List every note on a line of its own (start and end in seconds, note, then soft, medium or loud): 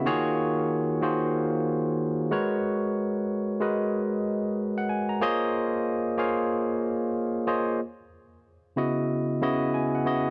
0.06 0.81 D#3 loud
0.06 0.81 A#3 loud
0.06 0.81 F4 loud
0.06 0.81 F#4 medium
0.06 0.81 G#4 loud
0.06 0.81 C#5 loud
1.02 2.00 D#3 medium
1.02 2.00 A#3 medium
1.02 2.00 F4 medium
1.02 2.00 F#4 medium
1.02 2.00 G#4 medium
1.02 2.00 C5 medium
2.31 3.36 G#3 medium
2.31 3.36 F#4 medium
2.31 3.36 A#4 medium
2.31 3.36 B4 medium
2.31 3.36 C#5 medium
3.61 4.13 G#3 medium
3.61 4.13 F#4 medium
3.61 4.13 A#4 medium
3.61 4.13 B4 medium
3.61 4.13 D#5 medium
4.78 4.89 F#5 medium
4.89 5.08 G#5 medium
5.09 5.40 A#5 medium
5.21 5.97 A#3 loud
5.21 5.97 F4 medium
5.21 5.97 G#4 loud
5.21 5.97 C5 medium
5.21 5.97 C#5 medium
5.21 5.97 D#5 loud
6.17 7.15 A#3 medium
6.17 7.16 F4 medium
6.17 7.16 G#4 medium
6.17 7.16 C5 medium
6.17 7.16 C#5 medium
6.17 7.16 F5 medium
7.47 7.79 A#3 medium
7.47 7.79 F4 medium
7.47 7.79 G#4 medium
7.47 7.79 C5 medium
7.47 7.80 C#5 medium
7.47 7.80 D#5 medium
8.76 9.29 C#3 medium
8.76 9.29 B3 medium
8.76 9.29 E4 medium
8.76 9.29 F#4 medium
8.76 9.30 D#5 medium
9.42 9.94 C#3 medium
9.42 9.94 B3 medium
9.42 9.94 E4 medium
9.42 9.94 F#4 medium
9.42 9.94 D#5 loud
9.74 9.92 G#5 medium
9.95 10.30 F#5 medium
10.06 10.30 C#3 medium
10.06 10.30 B3 medium
10.06 10.30 E4 medium
10.06 10.30 F#4 medium
10.06 10.30 D#5 medium